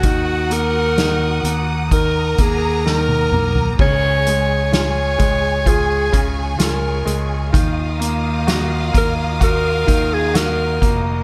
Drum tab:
CC |----------------|x---------------|----------------|
HH |x-x-x-x-x-x-----|--x-x-x-x-x-x-x-|x-x-x-x-x-x-x-x-|
SD |----o-------o---|----o-------o---|----o-------o---|
T1 |-------------o--|----------------|----------------|
T2 |--------------o-|----------------|----------------|
FT |---------------o|----------------|----------------|
BD |o-------o-o-----|o-----o-o-o-----|o-----o-o-o---o-|